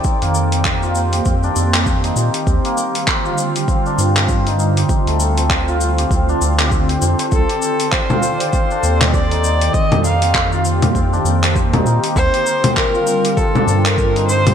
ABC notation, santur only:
X:1
M:4/4
L:1/16
Q:"Swing 16ths" 1/4=99
K:Fmix
V:1 name="Santur"
C B, B C z F C G C D C C c E E G | C B, B C c F C G C D C C c E E G | C A, A C c F C G C D C G C c C c | C G A C c F C G C D C C c E E G |
C G B C c F C G C D C C c E E G | C G B C c F C G C D C C c E E G |]